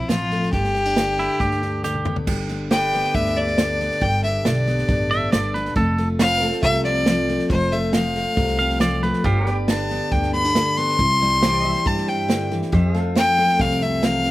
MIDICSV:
0, 0, Header, 1, 7, 480
1, 0, Start_track
1, 0, Tempo, 435730
1, 584, Time_signature, 4, 2, 24, 8
1, 15763, End_track
2, 0, Start_track
2, 0, Title_t, "Fiddle"
2, 0, Program_c, 0, 110
2, 20, Note_on_c, 0, 64, 62
2, 98, Note_on_c, 0, 65, 92
2, 114, Note_off_c, 0, 64, 0
2, 575, Note_off_c, 0, 65, 0
2, 581, Note_on_c, 0, 67, 98
2, 1980, Note_off_c, 0, 67, 0
2, 2987, Note_on_c, 0, 79, 100
2, 3471, Note_on_c, 0, 76, 91
2, 3487, Note_off_c, 0, 79, 0
2, 3714, Note_on_c, 0, 74, 98
2, 3731, Note_off_c, 0, 76, 0
2, 4427, Note_on_c, 0, 79, 101
2, 4443, Note_off_c, 0, 74, 0
2, 4663, Note_off_c, 0, 79, 0
2, 4670, Note_on_c, 0, 76, 85
2, 4910, Note_on_c, 0, 74, 86
2, 4926, Note_off_c, 0, 76, 0
2, 6106, Note_off_c, 0, 74, 0
2, 6824, Note_on_c, 0, 77, 115
2, 7270, Note_off_c, 0, 77, 0
2, 7301, Note_on_c, 0, 76, 99
2, 7525, Note_off_c, 0, 76, 0
2, 7543, Note_on_c, 0, 74, 99
2, 8218, Note_off_c, 0, 74, 0
2, 8271, Note_on_c, 0, 72, 96
2, 8508, Note_on_c, 0, 76, 90
2, 8525, Note_off_c, 0, 72, 0
2, 8745, Note_off_c, 0, 76, 0
2, 8752, Note_on_c, 0, 77, 93
2, 9902, Note_off_c, 0, 77, 0
2, 10671, Note_on_c, 0, 81, 88
2, 11147, Note_on_c, 0, 79, 87
2, 11164, Note_off_c, 0, 81, 0
2, 11384, Note_off_c, 0, 79, 0
2, 11388, Note_on_c, 0, 83, 102
2, 11871, Note_on_c, 0, 84, 115
2, 11887, Note_off_c, 0, 83, 0
2, 13076, Note_on_c, 0, 81, 93
2, 13093, Note_off_c, 0, 84, 0
2, 13317, Note_on_c, 0, 79, 82
2, 13333, Note_off_c, 0, 81, 0
2, 13789, Note_off_c, 0, 79, 0
2, 14509, Note_on_c, 0, 79, 107
2, 14991, Note_on_c, 0, 77, 98
2, 15008, Note_off_c, 0, 79, 0
2, 15235, Note_on_c, 0, 76, 94
2, 15252, Note_off_c, 0, 77, 0
2, 15477, Note_on_c, 0, 77, 106
2, 15494, Note_off_c, 0, 76, 0
2, 15763, Note_off_c, 0, 77, 0
2, 15763, End_track
3, 0, Start_track
3, 0, Title_t, "Clean electric guitar"
3, 0, Program_c, 1, 27
3, 1315, Note_on_c, 1, 64, 78
3, 1543, Note_off_c, 1, 64, 0
3, 1546, Note_on_c, 1, 67, 82
3, 2012, Note_off_c, 1, 67, 0
3, 2030, Note_on_c, 1, 67, 86
3, 2377, Note_off_c, 1, 67, 0
3, 5627, Note_on_c, 1, 76, 97
3, 5858, Note_off_c, 1, 76, 0
3, 5865, Note_on_c, 1, 74, 85
3, 6097, Note_off_c, 1, 74, 0
3, 6106, Note_on_c, 1, 71, 74
3, 6338, Note_off_c, 1, 71, 0
3, 6352, Note_on_c, 1, 69, 89
3, 6697, Note_off_c, 1, 69, 0
3, 9460, Note_on_c, 1, 77, 83
3, 9693, Note_off_c, 1, 77, 0
3, 9704, Note_on_c, 1, 74, 84
3, 9935, Note_off_c, 1, 74, 0
3, 9947, Note_on_c, 1, 71, 77
3, 10177, Note_off_c, 1, 71, 0
3, 10194, Note_on_c, 1, 67, 97
3, 10537, Note_off_c, 1, 67, 0
3, 15763, End_track
4, 0, Start_track
4, 0, Title_t, "Pedal steel guitar"
4, 0, Program_c, 2, 26
4, 2988, Note_on_c, 2, 67, 65
4, 2998, Note_on_c, 2, 71, 62
4, 3010, Note_on_c, 2, 74, 71
4, 6311, Note_off_c, 2, 67, 0
4, 6317, Note_off_c, 2, 71, 0
4, 6323, Note_off_c, 2, 74, 0
4, 6833, Note_on_c, 2, 65, 68
4, 6840, Note_on_c, 2, 71, 70
4, 6852, Note_on_c, 2, 72, 73
4, 7115, Note_off_c, 2, 71, 0
4, 7115, Note_on_c, 2, 69, 70
4, 10152, Note_off_c, 2, 65, 0
4, 10156, Note_off_c, 2, 69, 0
4, 10162, Note_off_c, 2, 72, 0
4, 10185, Note_on_c, 2, 65, 69
4, 10194, Note_on_c, 2, 69, 70
4, 10204, Note_on_c, 2, 72, 70
4, 10460, Note_off_c, 2, 65, 0
4, 10460, Note_on_c, 2, 67, 69
4, 10469, Note_off_c, 2, 69, 0
4, 10469, Note_on_c, 2, 71, 70
4, 10479, Note_off_c, 2, 72, 0
4, 10479, Note_on_c, 2, 74, 70
4, 12083, Note_off_c, 2, 67, 0
4, 12088, Note_off_c, 2, 71, 0
4, 12093, Note_off_c, 2, 74, 0
4, 12586, Note_on_c, 2, 67, 67
4, 12597, Note_on_c, 2, 72, 68
4, 12610, Note_on_c, 2, 74, 69
4, 12885, Note_off_c, 2, 74, 0
4, 12885, Note_on_c, 2, 76, 69
4, 14009, Note_off_c, 2, 67, 0
4, 14014, Note_off_c, 2, 72, 0
4, 14021, Note_off_c, 2, 76, 0
4, 14026, Note_on_c, 2, 67, 75
4, 14040, Note_on_c, 2, 72, 73
4, 14053, Note_on_c, 2, 76, 72
4, 14274, Note_off_c, 2, 76, 0
4, 14274, Note_on_c, 2, 77, 72
4, 14301, Note_off_c, 2, 67, 0
4, 14301, Note_on_c, 2, 69, 75
4, 15763, Note_off_c, 2, 69, 0
4, 15763, Note_off_c, 2, 72, 0
4, 15763, Note_off_c, 2, 77, 0
4, 15763, End_track
5, 0, Start_track
5, 0, Title_t, "Steel-string acoustic guitar"
5, 0, Program_c, 3, 25
5, 0, Note_on_c, 3, 41, 70
5, 0, Note_on_c, 3, 60, 62
5, 97, Note_on_c, 3, 53, 59
5, 349, Note_on_c, 3, 57, 55
5, 552, Note_off_c, 3, 41, 0
5, 552, Note_off_c, 3, 53, 0
5, 556, Note_off_c, 3, 60, 0
5, 558, Note_off_c, 3, 57, 0
5, 589, Note_on_c, 3, 43, 75
5, 824, Note_on_c, 3, 59, 55
5, 942, Note_off_c, 3, 59, 0
5, 942, Note_on_c, 3, 62, 44
5, 1060, Note_on_c, 3, 50, 60
5, 1537, Note_off_c, 3, 43, 0
5, 1551, Note_on_c, 3, 43, 59
5, 1784, Note_off_c, 3, 62, 0
5, 1798, Note_on_c, 3, 62, 53
5, 2014, Note_off_c, 3, 50, 0
5, 2027, Note_on_c, 3, 50, 57
5, 2274, Note_on_c, 3, 59, 55
5, 2480, Note_off_c, 3, 43, 0
5, 2481, Note_off_c, 3, 59, 0
5, 2483, Note_off_c, 3, 62, 0
5, 2506, Note_on_c, 3, 43, 73
5, 2516, Note_on_c, 3, 67, 71
5, 2748, Note_on_c, 3, 59, 62
5, 2969, Note_off_c, 3, 50, 0
5, 2982, Note_on_c, 3, 50, 67
5, 2988, Note_on_c, 3, 62, 63
5, 3228, Note_off_c, 3, 59, 0
5, 3232, Note_on_c, 3, 59, 56
5, 3459, Note_off_c, 3, 43, 0
5, 3464, Note_on_c, 3, 43, 71
5, 3704, Note_off_c, 3, 62, 0
5, 3717, Note_on_c, 3, 62, 52
5, 3933, Note_off_c, 3, 50, 0
5, 3946, Note_on_c, 3, 50, 58
5, 4182, Note_off_c, 3, 59, 0
5, 4195, Note_on_c, 3, 59, 60
5, 4396, Note_off_c, 3, 43, 0
5, 4402, Note_off_c, 3, 59, 0
5, 4402, Note_off_c, 3, 67, 0
5, 4403, Note_off_c, 3, 62, 0
5, 4419, Note_on_c, 3, 43, 73
5, 4427, Note_on_c, 3, 67, 69
5, 4665, Note_on_c, 3, 59, 59
5, 4889, Note_off_c, 3, 50, 0
5, 4903, Note_on_c, 3, 50, 65
5, 4911, Note_on_c, 3, 62, 68
5, 5137, Note_off_c, 3, 59, 0
5, 5150, Note_on_c, 3, 59, 60
5, 5382, Note_off_c, 3, 43, 0
5, 5395, Note_on_c, 3, 43, 72
5, 5619, Note_off_c, 3, 62, 0
5, 5632, Note_on_c, 3, 62, 54
5, 5850, Note_off_c, 3, 50, 0
5, 5863, Note_on_c, 3, 50, 62
5, 6107, Note_off_c, 3, 59, 0
5, 6121, Note_on_c, 3, 59, 63
5, 6316, Note_off_c, 3, 67, 0
5, 6319, Note_off_c, 3, 62, 0
5, 6320, Note_off_c, 3, 43, 0
5, 6324, Note_off_c, 3, 59, 0
5, 6341, Note_on_c, 3, 41, 78
5, 6343, Note_off_c, 3, 50, 0
5, 6348, Note_on_c, 3, 65, 68
5, 6591, Note_on_c, 3, 57, 59
5, 6826, Note_on_c, 3, 53, 71
5, 6833, Note_on_c, 3, 60, 58
5, 7064, Note_off_c, 3, 57, 0
5, 7068, Note_on_c, 3, 57, 58
5, 7310, Note_on_c, 3, 48, 71
5, 7545, Note_off_c, 3, 60, 0
5, 7558, Note_on_c, 3, 60, 58
5, 7779, Note_off_c, 3, 53, 0
5, 7786, Note_off_c, 3, 48, 0
5, 7792, Note_on_c, 3, 53, 63
5, 8025, Note_off_c, 3, 57, 0
5, 8037, Note_on_c, 3, 57, 61
5, 8232, Note_off_c, 3, 41, 0
5, 8235, Note_off_c, 3, 65, 0
5, 8238, Note_off_c, 3, 53, 0
5, 8241, Note_off_c, 3, 57, 0
5, 8241, Note_off_c, 3, 60, 0
5, 8270, Note_on_c, 3, 41, 77
5, 8275, Note_on_c, 3, 65, 69
5, 8512, Note_on_c, 3, 57, 61
5, 8741, Note_on_c, 3, 53, 65
5, 8752, Note_on_c, 3, 60, 63
5, 8974, Note_off_c, 3, 57, 0
5, 8987, Note_on_c, 3, 57, 62
5, 9224, Note_on_c, 3, 48, 65
5, 9466, Note_off_c, 3, 60, 0
5, 9480, Note_on_c, 3, 60, 52
5, 9691, Note_off_c, 3, 53, 0
5, 9703, Note_off_c, 3, 48, 0
5, 9704, Note_on_c, 3, 53, 60
5, 9939, Note_off_c, 3, 57, 0
5, 9953, Note_on_c, 3, 57, 58
5, 10153, Note_off_c, 3, 53, 0
5, 10156, Note_off_c, 3, 41, 0
5, 10158, Note_off_c, 3, 57, 0
5, 10159, Note_off_c, 3, 65, 0
5, 10162, Note_off_c, 3, 60, 0
5, 10183, Note_on_c, 3, 43, 78
5, 10193, Note_on_c, 3, 67, 57
5, 10430, Note_on_c, 3, 59, 61
5, 10663, Note_on_c, 3, 50, 61
5, 10671, Note_on_c, 3, 62, 65
5, 10903, Note_off_c, 3, 59, 0
5, 10916, Note_on_c, 3, 59, 57
5, 11133, Note_off_c, 3, 43, 0
5, 11146, Note_on_c, 3, 43, 69
5, 11377, Note_off_c, 3, 59, 0
5, 11385, Note_off_c, 3, 62, 0
5, 11390, Note_on_c, 3, 59, 62
5, 11509, Note_off_c, 3, 59, 0
5, 11509, Note_on_c, 3, 62, 48
5, 11616, Note_off_c, 3, 50, 0
5, 11630, Note_on_c, 3, 50, 67
5, 11875, Note_on_c, 3, 59, 61
5, 12074, Note_off_c, 3, 43, 0
5, 12075, Note_off_c, 3, 67, 0
5, 12079, Note_off_c, 3, 59, 0
5, 12104, Note_off_c, 3, 62, 0
5, 12105, Note_off_c, 3, 50, 0
5, 12110, Note_on_c, 3, 48, 75
5, 12119, Note_on_c, 3, 64, 71
5, 12364, Note_on_c, 3, 55, 65
5, 12585, Note_off_c, 3, 48, 0
5, 12590, Note_on_c, 3, 52, 62
5, 12597, Note_on_c, 3, 60, 66
5, 12814, Note_off_c, 3, 55, 0
5, 12827, Note_on_c, 3, 55, 59
5, 13061, Note_on_c, 3, 43, 68
5, 13292, Note_off_c, 3, 60, 0
5, 13305, Note_on_c, 3, 60, 57
5, 13529, Note_off_c, 3, 52, 0
5, 13533, Note_on_c, 3, 50, 59
5, 13777, Note_off_c, 3, 50, 0
5, 13788, Note_on_c, 3, 52, 65
5, 13992, Note_off_c, 3, 43, 0
5, 13994, Note_off_c, 3, 60, 0
5, 14015, Note_on_c, 3, 41, 77
5, 14018, Note_off_c, 3, 64, 0
5, 14022, Note_on_c, 3, 65, 68
5, 14024, Note_off_c, 3, 52, 0
5, 14024, Note_off_c, 3, 55, 0
5, 14260, Note_on_c, 3, 57, 58
5, 14491, Note_on_c, 3, 53, 61
5, 14502, Note_on_c, 3, 60, 62
5, 14728, Note_off_c, 3, 57, 0
5, 14742, Note_on_c, 3, 57, 64
5, 14973, Note_on_c, 3, 48, 73
5, 15215, Note_off_c, 3, 60, 0
5, 15228, Note_on_c, 3, 60, 61
5, 15447, Note_off_c, 3, 41, 0
5, 15451, Note_on_c, 3, 40, 61
5, 15695, Note_off_c, 3, 40, 0
5, 15700, Note_on_c, 3, 41, 61
5, 15763, Note_off_c, 3, 41, 0
5, 15763, Note_off_c, 3, 48, 0
5, 15763, Note_off_c, 3, 53, 0
5, 15763, Note_off_c, 3, 57, 0
5, 15763, Note_off_c, 3, 60, 0
5, 15763, Note_off_c, 3, 65, 0
5, 15763, End_track
6, 0, Start_track
6, 0, Title_t, "Upright bass"
6, 0, Program_c, 4, 32
6, 103, Note_on_c, 4, 33, 79
6, 512, Note_off_c, 4, 33, 0
6, 583, Note_on_c, 4, 31, 90
6, 1393, Note_off_c, 4, 31, 0
6, 1543, Note_on_c, 4, 38, 74
6, 2353, Note_off_c, 4, 38, 0
6, 2502, Note_on_c, 4, 31, 95
6, 3312, Note_off_c, 4, 31, 0
6, 3465, Note_on_c, 4, 38, 79
6, 4273, Note_off_c, 4, 38, 0
6, 4423, Note_on_c, 4, 31, 98
6, 4828, Note_off_c, 4, 31, 0
6, 4907, Note_on_c, 4, 35, 85
6, 5314, Note_off_c, 4, 35, 0
6, 5385, Note_on_c, 4, 33, 82
6, 5792, Note_off_c, 4, 33, 0
6, 5870, Note_on_c, 4, 31, 87
6, 6275, Note_off_c, 4, 31, 0
6, 6344, Note_on_c, 4, 29, 102
6, 7152, Note_off_c, 4, 29, 0
6, 7304, Note_on_c, 4, 36, 83
6, 8111, Note_off_c, 4, 36, 0
6, 8262, Note_on_c, 4, 29, 94
6, 9070, Note_off_c, 4, 29, 0
6, 9221, Note_on_c, 4, 36, 84
6, 10029, Note_off_c, 4, 36, 0
6, 10181, Note_on_c, 4, 31, 96
6, 10989, Note_off_c, 4, 31, 0
6, 11145, Note_on_c, 4, 38, 79
6, 11951, Note_off_c, 4, 38, 0
6, 12106, Note_on_c, 4, 36, 96
6, 12912, Note_off_c, 4, 36, 0
6, 13064, Note_on_c, 4, 43, 78
6, 13871, Note_off_c, 4, 43, 0
6, 14020, Note_on_c, 4, 41, 89
6, 14829, Note_off_c, 4, 41, 0
6, 14977, Note_on_c, 4, 36, 85
6, 15763, Note_off_c, 4, 36, 0
6, 15763, End_track
7, 0, Start_track
7, 0, Title_t, "Drums"
7, 104, Note_on_c, 9, 38, 101
7, 104, Note_on_c, 9, 44, 70
7, 214, Note_off_c, 9, 38, 0
7, 214, Note_off_c, 9, 44, 0
7, 342, Note_on_c, 9, 38, 34
7, 452, Note_off_c, 9, 38, 0
7, 467, Note_on_c, 9, 38, 30
7, 577, Note_off_c, 9, 38, 0
7, 581, Note_on_c, 9, 36, 89
7, 583, Note_on_c, 9, 38, 31
7, 691, Note_off_c, 9, 36, 0
7, 693, Note_off_c, 9, 38, 0
7, 705, Note_on_c, 9, 38, 34
7, 815, Note_off_c, 9, 38, 0
7, 827, Note_on_c, 9, 38, 34
7, 937, Note_off_c, 9, 38, 0
7, 1062, Note_on_c, 9, 38, 104
7, 1062, Note_on_c, 9, 44, 88
7, 1173, Note_off_c, 9, 38, 0
7, 1173, Note_off_c, 9, 44, 0
7, 1305, Note_on_c, 9, 38, 33
7, 1415, Note_off_c, 9, 38, 0
7, 1540, Note_on_c, 9, 38, 32
7, 1542, Note_on_c, 9, 36, 99
7, 1650, Note_off_c, 9, 38, 0
7, 1652, Note_off_c, 9, 36, 0
7, 1663, Note_on_c, 9, 38, 31
7, 1773, Note_off_c, 9, 38, 0
7, 1782, Note_on_c, 9, 38, 34
7, 1893, Note_off_c, 9, 38, 0
7, 2024, Note_on_c, 9, 38, 51
7, 2024, Note_on_c, 9, 44, 77
7, 2134, Note_off_c, 9, 38, 0
7, 2134, Note_off_c, 9, 44, 0
7, 2145, Note_on_c, 9, 48, 51
7, 2255, Note_off_c, 9, 48, 0
7, 2262, Note_on_c, 9, 45, 87
7, 2373, Note_off_c, 9, 45, 0
7, 2382, Note_on_c, 9, 43, 72
7, 2492, Note_off_c, 9, 43, 0
7, 2503, Note_on_c, 9, 36, 101
7, 2503, Note_on_c, 9, 38, 35
7, 2503, Note_on_c, 9, 49, 93
7, 2613, Note_off_c, 9, 36, 0
7, 2613, Note_off_c, 9, 38, 0
7, 2613, Note_off_c, 9, 49, 0
7, 2747, Note_on_c, 9, 38, 34
7, 2858, Note_off_c, 9, 38, 0
7, 2986, Note_on_c, 9, 38, 120
7, 2986, Note_on_c, 9, 44, 84
7, 3096, Note_off_c, 9, 38, 0
7, 3096, Note_off_c, 9, 44, 0
7, 3228, Note_on_c, 9, 38, 36
7, 3338, Note_off_c, 9, 38, 0
7, 3348, Note_on_c, 9, 38, 30
7, 3458, Note_off_c, 9, 38, 0
7, 3463, Note_on_c, 9, 36, 96
7, 3463, Note_on_c, 9, 38, 34
7, 3573, Note_off_c, 9, 36, 0
7, 3573, Note_off_c, 9, 38, 0
7, 3586, Note_on_c, 9, 38, 33
7, 3696, Note_off_c, 9, 38, 0
7, 3705, Note_on_c, 9, 38, 35
7, 3816, Note_off_c, 9, 38, 0
7, 3823, Note_on_c, 9, 38, 32
7, 3933, Note_off_c, 9, 38, 0
7, 3942, Note_on_c, 9, 38, 104
7, 3942, Note_on_c, 9, 44, 88
7, 4053, Note_off_c, 9, 38, 0
7, 4053, Note_off_c, 9, 44, 0
7, 4187, Note_on_c, 9, 38, 35
7, 4297, Note_off_c, 9, 38, 0
7, 4306, Note_on_c, 9, 38, 34
7, 4416, Note_off_c, 9, 38, 0
7, 4423, Note_on_c, 9, 36, 92
7, 4423, Note_on_c, 9, 38, 31
7, 4533, Note_off_c, 9, 36, 0
7, 4534, Note_off_c, 9, 38, 0
7, 4667, Note_on_c, 9, 38, 36
7, 4777, Note_off_c, 9, 38, 0
7, 4903, Note_on_c, 9, 38, 105
7, 4903, Note_on_c, 9, 44, 93
7, 5013, Note_off_c, 9, 38, 0
7, 5013, Note_off_c, 9, 44, 0
7, 5145, Note_on_c, 9, 38, 37
7, 5255, Note_off_c, 9, 38, 0
7, 5264, Note_on_c, 9, 38, 30
7, 5374, Note_off_c, 9, 38, 0
7, 5383, Note_on_c, 9, 36, 117
7, 5383, Note_on_c, 9, 38, 34
7, 5493, Note_off_c, 9, 36, 0
7, 5493, Note_off_c, 9, 38, 0
7, 5628, Note_on_c, 9, 38, 35
7, 5738, Note_off_c, 9, 38, 0
7, 5868, Note_on_c, 9, 38, 105
7, 5868, Note_on_c, 9, 44, 87
7, 5978, Note_off_c, 9, 38, 0
7, 5978, Note_off_c, 9, 44, 0
7, 6106, Note_on_c, 9, 38, 36
7, 6216, Note_off_c, 9, 38, 0
7, 6226, Note_on_c, 9, 38, 32
7, 6336, Note_off_c, 9, 38, 0
7, 6343, Note_on_c, 9, 36, 103
7, 6344, Note_on_c, 9, 38, 32
7, 6454, Note_off_c, 9, 36, 0
7, 6454, Note_off_c, 9, 38, 0
7, 6585, Note_on_c, 9, 38, 35
7, 6696, Note_off_c, 9, 38, 0
7, 6823, Note_on_c, 9, 38, 112
7, 6823, Note_on_c, 9, 44, 89
7, 6933, Note_off_c, 9, 38, 0
7, 6933, Note_off_c, 9, 44, 0
7, 7062, Note_on_c, 9, 38, 36
7, 7172, Note_off_c, 9, 38, 0
7, 7181, Note_on_c, 9, 38, 33
7, 7291, Note_off_c, 9, 38, 0
7, 7300, Note_on_c, 9, 38, 35
7, 7301, Note_on_c, 9, 36, 117
7, 7410, Note_off_c, 9, 38, 0
7, 7411, Note_off_c, 9, 36, 0
7, 7419, Note_on_c, 9, 38, 35
7, 7529, Note_off_c, 9, 38, 0
7, 7537, Note_on_c, 9, 38, 36
7, 7648, Note_off_c, 9, 38, 0
7, 7779, Note_on_c, 9, 38, 109
7, 7779, Note_on_c, 9, 44, 84
7, 7889, Note_off_c, 9, 38, 0
7, 7889, Note_off_c, 9, 44, 0
7, 8022, Note_on_c, 9, 38, 34
7, 8132, Note_off_c, 9, 38, 0
7, 8143, Note_on_c, 9, 38, 33
7, 8253, Note_off_c, 9, 38, 0
7, 8258, Note_on_c, 9, 38, 32
7, 8260, Note_on_c, 9, 36, 109
7, 8368, Note_off_c, 9, 38, 0
7, 8370, Note_off_c, 9, 36, 0
7, 8498, Note_on_c, 9, 38, 33
7, 8608, Note_off_c, 9, 38, 0
7, 8736, Note_on_c, 9, 38, 111
7, 8736, Note_on_c, 9, 44, 81
7, 8846, Note_off_c, 9, 38, 0
7, 8846, Note_off_c, 9, 44, 0
7, 8981, Note_on_c, 9, 38, 34
7, 9091, Note_off_c, 9, 38, 0
7, 9220, Note_on_c, 9, 38, 35
7, 9221, Note_on_c, 9, 36, 108
7, 9330, Note_off_c, 9, 38, 0
7, 9331, Note_off_c, 9, 36, 0
7, 9337, Note_on_c, 9, 38, 32
7, 9448, Note_off_c, 9, 38, 0
7, 9457, Note_on_c, 9, 38, 36
7, 9567, Note_off_c, 9, 38, 0
7, 9578, Note_on_c, 9, 38, 31
7, 9688, Note_off_c, 9, 38, 0
7, 9695, Note_on_c, 9, 38, 99
7, 9695, Note_on_c, 9, 44, 82
7, 9805, Note_off_c, 9, 38, 0
7, 9805, Note_off_c, 9, 44, 0
7, 9937, Note_on_c, 9, 38, 35
7, 10047, Note_off_c, 9, 38, 0
7, 10059, Note_on_c, 9, 38, 30
7, 10169, Note_off_c, 9, 38, 0
7, 10180, Note_on_c, 9, 38, 31
7, 10182, Note_on_c, 9, 36, 103
7, 10290, Note_off_c, 9, 38, 0
7, 10292, Note_off_c, 9, 36, 0
7, 10422, Note_on_c, 9, 38, 37
7, 10532, Note_off_c, 9, 38, 0
7, 10664, Note_on_c, 9, 38, 111
7, 10664, Note_on_c, 9, 44, 88
7, 10774, Note_off_c, 9, 38, 0
7, 10774, Note_off_c, 9, 44, 0
7, 10905, Note_on_c, 9, 38, 34
7, 11015, Note_off_c, 9, 38, 0
7, 11144, Note_on_c, 9, 36, 106
7, 11145, Note_on_c, 9, 38, 32
7, 11254, Note_off_c, 9, 36, 0
7, 11255, Note_off_c, 9, 38, 0
7, 11265, Note_on_c, 9, 38, 33
7, 11376, Note_off_c, 9, 38, 0
7, 11385, Note_on_c, 9, 38, 35
7, 11495, Note_off_c, 9, 38, 0
7, 11508, Note_on_c, 9, 38, 30
7, 11618, Note_off_c, 9, 38, 0
7, 11625, Note_on_c, 9, 38, 109
7, 11625, Note_on_c, 9, 44, 80
7, 11736, Note_off_c, 9, 38, 0
7, 11736, Note_off_c, 9, 44, 0
7, 11869, Note_on_c, 9, 38, 36
7, 11979, Note_off_c, 9, 38, 0
7, 11989, Note_on_c, 9, 38, 36
7, 12099, Note_off_c, 9, 38, 0
7, 12105, Note_on_c, 9, 36, 101
7, 12105, Note_on_c, 9, 38, 32
7, 12215, Note_off_c, 9, 36, 0
7, 12215, Note_off_c, 9, 38, 0
7, 12350, Note_on_c, 9, 38, 34
7, 12460, Note_off_c, 9, 38, 0
7, 12586, Note_on_c, 9, 38, 106
7, 12586, Note_on_c, 9, 44, 93
7, 12696, Note_off_c, 9, 38, 0
7, 12696, Note_off_c, 9, 44, 0
7, 12827, Note_on_c, 9, 38, 35
7, 12937, Note_off_c, 9, 38, 0
7, 12947, Note_on_c, 9, 38, 33
7, 13057, Note_off_c, 9, 38, 0
7, 13065, Note_on_c, 9, 36, 103
7, 13066, Note_on_c, 9, 38, 33
7, 13175, Note_off_c, 9, 36, 0
7, 13176, Note_off_c, 9, 38, 0
7, 13191, Note_on_c, 9, 38, 33
7, 13301, Note_off_c, 9, 38, 0
7, 13305, Note_on_c, 9, 38, 35
7, 13416, Note_off_c, 9, 38, 0
7, 13545, Note_on_c, 9, 38, 106
7, 13545, Note_on_c, 9, 44, 85
7, 13655, Note_off_c, 9, 38, 0
7, 13655, Note_off_c, 9, 44, 0
7, 13786, Note_on_c, 9, 38, 36
7, 13896, Note_off_c, 9, 38, 0
7, 13901, Note_on_c, 9, 38, 36
7, 14011, Note_off_c, 9, 38, 0
7, 14020, Note_on_c, 9, 36, 99
7, 14020, Note_on_c, 9, 38, 34
7, 14130, Note_off_c, 9, 36, 0
7, 14130, Note_off_c, 9, 38, 0
7, 14261, Note_on_c, 9, 38, 33
7, 14371, Note_off_c, 9, 38, 0
7, 14501, Note_on_c, 9, 38, 114
7, 14501, Note_on_c, 9, 44, 96
7, 14611, Note_off_c, 9, 38, 0
7, 14611, Note_off_c, 9, 44, 0
7, 14740, Note_on_c, 9, 38, 39
7, 14850, Note_off_c, 9, 38, 0
7, 14858, Note_on_c, 9, 38, 31
7, 14968, Note_off_c, 9, 38, 0
7, 14975, Note_on_c, 9, 38, 35
7, 14977, Note_on_c, 9, 36, 107
7, 15085, Note_off_c, 9, 38, 0
7, 15087, Note_off_c, 9, 36, 0
7, 15097, Note_on_c, 9, 38, 32
7, 15208, Note_off_c, 9, 38, 0
7, 15214, Note_on_c, 9, 38, 37
7, 15324, Note_off_c, 9, 38, 0
7, 15453, Note_on_c, 9, 38, 105
7, 15453, Note_on_c, 9, 44, 84
7, 15563, Note_off_c, 9, 38, 0
7, 15563, Note_off_c, 9, 44, 0
7, 15694, Note_on_c, 9, 38, 35
7, 15763, Note_off_c, 9, 38, 0
7, 15763, End_track
0, 0, End_of_file